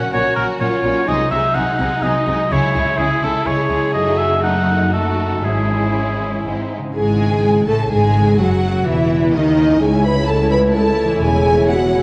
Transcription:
Already playing: A#2 F#3 A#3 C#4 F#4 F#5
0.11 A#1 A#2 A#3 C#4 F#4 A#4 C#5
0.36 A#1 A#2 C#4 F#4 A#4
0.60 A#1 A#2 F#3 C#4 F4 F#4 A#4 C#5
0.83 A#1 A#2 A#3 C#4 F#4 A#4
1.07 C2 C3 G#3 D#4 G#4 D#5
1.30 C2 C3 F#3 G#3 D#4 G#4 E5
1.54 C2 C3 G#3 D#4 G#4 F#5
1.78 C2 C3 G#3 D#4 G#4
2.01 C2 C3 F#3 G#3 D#4 G#4 D#5
2.26 C2 C3 G#3 D#4 G#4
2.50 C#2 C#3 G#3 E4 G#4 C#5
2.73 C#2 C#3 G#3 C#4 E4 G#4
2.98 C#2 C#3 G#3 E4 G#4
3.22 C#2 C#3 G#3 E4 G#4 A4
3.45 C#2 C#3 G#3 C#4 E4 G#4 C#5
3.70 C#2 C#3 G#3 E4 G#4
3.93 F#1 F#2 A3 D#4 F#4 D#5
4.18 F#3 E5
4.43 A3 D#4 F#4 F#5
4.68 D#4
4.91 F#3 A3 D#4 F#4 A4
5.18 A3
5.43 G#1 G#2 G#3 C#4 E4 G#4
5.69 E3
5.95 G#3
6.20 C#4
6.45 G#1 G#2 G#3 C4 D#4
6.72 C4 D#4
6.79 C#3
6.83 G#3
6.88 C#4
6.92 E4 G#4
6.96 G#1 G#2 G#3 G#4 G#5
7.67 A1 A2 A3 A4 A5
7.91 G#1 G#2 G#3 G#4 G#5
8.21 C#3
8.25 G#3
8.30 C4
8.34 G#4
8.39 F#1 F#2 F#3 F#4 F#5
8.86 E1 E2 E3 E4 E5
9.33 D#2 D#3 D#4 D#5
9.64 C#3
9.68 G#3
9.72 C#4
9.77 E4
9.82 C#2 G#3 E4 G#4 C#5 G#5
10.05 B4 B5
10.28 A4 A5
10.51 B4 B5
10.75 A4 A5
11.04 E3
11.09 G#3
11.13 C#4
11.18 E1 E2 G#4
11.22 E2 G#5
11.69 F#4 F#5

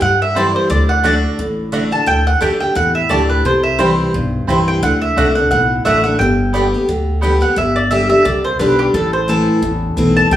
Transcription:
0.01 G2 F#5
0.22 E5
0.35 E3 G3 C4 E4 C5 D5 G5
0.56 C5
0.70 D2 D3 D5
0.89 F#5
1.03 D3 A3 D4 F#4 D5 F#5
1.39 A1 A2
1.72 D3 A3 D4 F#4 D5 F#5
1.91 D4 F#4 A5
2.06 D2 D3 G5
2.27 F#5
2.40 F#2 D3 A3 D4 G4 D5 G5 A5
2.60 D4 G4 G5
2.75 E2 A2 F#5
2.95 E5
3.09 D2 D3 A3 D4 G4 D5 A5
3.29 B4
3.45 C2 C3 C5
3.63 E5
3.79 E3 G3 C4 E4 C5 G5
4.14 B1 G2
4.47 C2 E3 G3 C4 E4 C5 G5
4.68 G5
4.83 D2 D3 F#5
5.02 E5
5.16 C2 D3 A3 D4 F#4 D5 F#5
5.35 D4 F#4 F#5
5.51 B1 A2 F#5
5.85 A1 D3 A3 D4 F#4 D5 E5 F#5
6.04 D4 F#4 F#5
6.19 G1 G2 G5
6.53 D3 G3 B3 G4 D5 G5
6.74 B3 G4
6.88 D2 D3
7.21 D3 G3 B3 G4 D5 G5
7.41 B3 G4 F#5
7.56 G1 G2 E5
7.76 D5
7.91 D3 G3 D4 G4 E5
8.09 D4 G4 E5
8.25 C2 D3 D5
8.45 C5
8.59 B1 D3 G3 D4 G4 B4
8.79 G4
8.94 A1 A2 A4
9.13 C5
9.28 E3 A3 C4 E4 A4
9.62 A1 E2
9.96 B1 E3 A3 C4 E4
10.17 A5
10.31 C2 C3 G5

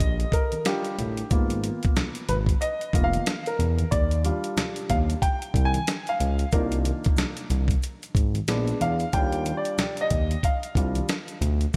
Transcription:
Already playing: D3 G3 F4 D#5
0.00 A#1, kick, closed hi-hat, maracas
0.20 closed hi-hat, maracas
0.32 A#4, kick, closed hi-hat, maracas
0.52 closed hi-hat, high conga, maracas
0.65 G3 D4 F4 G4, snare, closed hi-hat, maracas
0.85 closed hi-hat, maracas
0.98 A1, closed hi-hat, low conga, maracas
1.17 closed hi-hat, maracas
1.30 G#1 A#3 B3 F4, kick, closed hi-hat, maracas
1.50 closed hi-hat, high conga, maracas
1.64 closed hi-hat, high conga, maracas
1.83 kick, closed hi-hat, maracas
1.96 snare, closed hi-hat, low conga, maracas
2.15 closed hi-hat, maracas
2.29 G#1 B4, closed hi-hat, high conga, low conga, maracas
2.46 kick, closed hi-hat, maracas
2.61 D#5, closed hi-hat, maracas
2.81 closed hi-hat, maracas
2.93 F1 A#3 B3 F4, kick, closed hi-hat, maracas
3.04 F5
3.13 closed hi-hat, high conga, maracas
3.26 snare, closed hi-hat, maracas
3.46 A#4, closed hi-hat, maracas
3.59 E2, closed hi-hat, low conga, maracas
3.78 closed hi-hat, high conga, maracas
3.91 D#2 D5, kick, closed hi-hat, maracas
4.11 closed hi-hat, maracas
4.24 G3 D4 F4, closed hi-hat, high conga, maracas
4.44 closed hi-hat, maracas
4.57 snare, closed hi-hat, low conga, maracas
4.76 closed hi-hat, maracas
4.90 D#2 F5, kick, closed hi-hat, high conga, low conga, maracas
5.10 closed hi-hat, maracas
5.22 G5, kick, closed hi-hat, maracas
5.42 closed hi-hat, maracas
5.54 C2, kick, closed hi-hat, maracas
5.65 G#5
5.74 closed hi-hat, high conga, maracas
5.87 snare, closed hi-hat, maracas
6.07 F5, closed hi-hat, maracas
6.20 C#2, closed hi-hat, low conga, maracas
6.39 closed hi-hat, maracas
6.52 C2 A#3 D4 D#4 F4 A#4, kick, closed hi-hat, maracas
6.72 closed hi-hat, maracas
6.85 closed hi-hat, high conga, maracas
7.04 kick, closed hi-hat, maracas
7.17 snare, closed hi-hat, low conga, maracas
7.37 closed hi-hat, maracas
7.50 C2, closed hi-hat, high conga, low conga, maracas
7.68 kick, closed hi-hat, maracas
7.82 closed hi-hat, maracas
8.02 closed hi-hat, maracas
8.15 G#1, kick, closed hi-hat, maracas
8.35 closed hi-hat, high conga, maracas
8.48 A#1 G#3 B3 D4, snare, closed hi-hat, maracas
8.67 closed hi-hat, maracas
8.81 E2 F5, closed hi-hat, low conga, maracas
9.00 closed hi-hat, maracas
9.13 D#2 G3 D4 F4 G5, kick, closed hi-hat, maracas
9.32 closed hi-hat, maracas
9.45 closed hi-hat, high conga, maracas
9.57 D5
9.65 closed hi-hat, maracas
9.78 snare, closed hi-hat, low conga, maracas
9.97 D#5, closed hi-hat, maracas
10.10 D#2, kick, closed hi-hat, high conga, low conga, maracas
10.31 closed hi-hat, maracas
10.43 F5, kick, closed hi-hat, maracas
10.63 closed hi-hat, maracas
10.75 C2 G3 D4 F4, kick, closed hi-hat, maracas
10.95 closed hi-hat, high conga, maracas
11.08 snare, closed hi-hat, maracas
11.28 closed hi-hat, maracas
11.41 D2, closed hi-hat, low conga, maracas
11.61 closed hi-hat, maracas
11.73 maracas

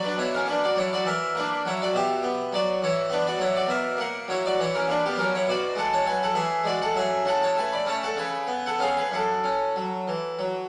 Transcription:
Already playing: F#3
0.04 D4 B4
0.17 B2 E4 C#5
0.34 C#4 A#4
0.46 A#3 D4 B4
0.64 F#4 D5
0.76 F#3 C#5
0.80 E4
0.93 F#4 D5
1.05 E3 A#4 E5
1.35 A#3 D4 B4
1.65 F#3 E4 C#5
1.82 F#4 D5
1.93 B2 G4 E5
2.23 B3
2.53 F#3 F#4 D5
2.82 E3 E4 C#5
3.10 B3 D4 B4
3.27 F#4 D5
3.38 F#3 E4 C#5
3.56 F#4 D5
3.67 B2 E5
3.71 A#4
3.97 A#3 A#4 F#5
4.28 F#3 E4 C#5
4.46 F#4 D5
4.59 E3 E4 C#5
4.75 C#4 A#4
4.88 A#3 D4 B4
5.05 B3 G4
5.17 F#3 C#4 A#4
5.35 E4 C#5
5.47 B2 F#4 D5
5.76 G#3 A4 F#5
5.93 C#5 A5
6.05 F#3 B4 G#5
6.23 A4 F#5
6.34 E3 G#4 E5
6.64 G#3 F#4 D5
6.82 A4 F#5
6.95 F#3 G#4 E5
7.25 C#3 A4 F#5
7.42 C#5 A5
7.55 A3 B4 G#5
7.73 D5 B5
7.85 A3 C#4 C#5 A5
8.03 A4 F#5
8.17 C#3 B4 G#5
8.47 B3
8.66 A4 F#5
8.78 B3 C#4 G#4 F5
8.97 B4 G#5
9.11 F#2 A4 F#5
9.44 C#4
9.76 F#3
10.08 E3
10.39 F#3

